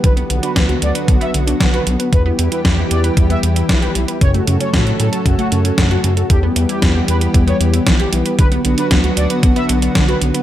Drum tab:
HH |xxxxxxxxxxxxxxxx|x-xxx-xxxxxxxxxx|xxxxxxxxxxxxxxxx|x-xxx-xxxxxxxxxx|
SD |----o-------o---|----o-------o---|----o-------o---|----o-------o---|
BD |o---o---o---o---|o---o---o---o---|o---o---o---o---|o---o---o---o---|

HH |xxxxxxxxxxxxxxxx|
SD |----o-------o---|
BD |o---o---o---o---|